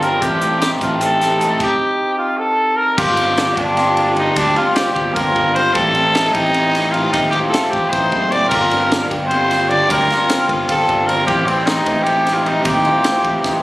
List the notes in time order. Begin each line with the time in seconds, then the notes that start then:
Already playing: G1 G2 G3 C4 D4 F4 G4
0.02 G2 D3 G3 A#3 C4 D4 A#4, closed hi-hat
0.21 A1 A2 E3 A3 C4 E4 G4 A4, kick, closed hi-hat
0.41 A3 C4 E4 A4, closed hi-hat
0.60 A3 C4 D#4 E4 G4 A4, snare, closed hi-hat
0.81 A1 A3 C4 E4 F4 G4 A4, kick, closed hi-hat
1.01 C4 A4, closed hi-hat
1.20 A3 C4 E4 G4 A4, snare, closed hi-hat
1.39 A2 E3 A3 C4 D#4 E4 A4, closed hi-hat
1.60 G4, kick, crash
2.18 F4
2.38 A4
2.77 A#4
2.97 G1 G2 D3 G3 A#3 D4 F4 G4, kick, crash
3.09 F4
3.17 G3 A#3 C4 D4, ride
3.37 D3 G3 A#3 D4 F4, snare, ride
3.57 G1 G3 A#3 D4 G4, kick, ride
3.77 C4 F4, snare, ride
3.97 G3 A#3 D4, ride
4.06 F4
4.16 G2 D3 G3 A#3 D4 D#4, ride
4.36 D2 G2 D3 G3 A#3 D4 G4, kick, ride
4.48 A#4
4.56 G3 A#3 C4 D4 F4, ride
4.75 D3 G3 A#3 C4 D4 F4 G4, snare, ride
4.93 G1 D4 G4, kick, ride
4.98 G3 A#3
5.14 G1 C4 F4 A#4, kick, ride
5.36 G1 G3 A#3 D4 F4, kick, ride
5.55 G2 D3 G3 A#3 C4 D4 C5, ride
5.73 A1 A2 E3 A3 C4 G4 A4, kick, ride
5.77 E4 G4
5.95 A3 C4 E4, ride
6.14 E3 A3 C4 D#4 E4 G4, snare, ride
6.33 A1 A3 C4 D#4 E4 G4, kick, ride
6.54 C4, ride
6.75 A3 C4 E4 G4, snare, ride
6.92 A2 E3 A3 D#4 F4, ride
6.96 C4 E4
7.13 D#2 A2 E3 A3 D#4 G4, kick, ride
7.17 C4 E4 C5
7.30 F4 G4, ride
7.36 A3 C4 E4
7.49 A4
7.54 E3 A3 C4 E4 G4, snare, ride
7.70 A1 G4, kick, ride
7.75 A3 C4 E4
7.90 A1 C4 D#4 C5, kick, ride
8.12 F#1 A3 C4 D4 E4 G4, kick, ride
8.31 A2 E3 A3 C4 E4 D5, ride
8.48 G1 G2 F4 A#4, kick, crash
8.52 D3 G3 A#3 D4 F4
8.71 G3 A#3 C4 D4, ride
8.92 D3 G3 A#3 D4, snare, ride
9.01 F4
9.11 G1 G3 A#3 D4 G4, kick, ride
9.27 C5
9.31 C4 F4, ride
9.51 G3 A#3 D4 F4, snare, ride
9.69 G2 D3 G3 A#3 D4 D5, ride
9.90 D2 G2 D3 G3 A#3 D4 G4 A#4, kick, ride
10.00 F4
10.09 G3 A#3 C4 D4 F4, snare, ride
10.29 D3 G3 A#3 C4 D4, snare, ride
10.38 F4
10.48 G1 G3 A#3 D4 F4, kick, ride
10.68 G1 F4 A4, kick, ride
10.89 G1 G3 A#3 D4, kick, ride
11.07 G2 D3 G3 A#3 C4 D4 A#4, ride
11.26 A1 A2 E3 A3 C4 E4 G4, kick, ride
11.46 A3 C4 E4, ride
11.67 E3 A3 C4 D#4 E4 G4, snare, ride
11.86 A1 A3 C4 E4 G4, kick, ride
12.04 C4 G4, ride
12.25 A3 C4 E4, snare, ride
12.34 F4
12.45 A2 E3 A3 C4 D#4 E4, ride
12.65 D#2 A2 E3 A3 C4 E4 G4, kick, ride
12.85 A3 C4 E4 F4, ride
13.04 E3 A3 C4 E4, snare, ride
13.24 A1 A3 C4 E4, kick, ride
13.44 A1 C4 D#4, kick, snare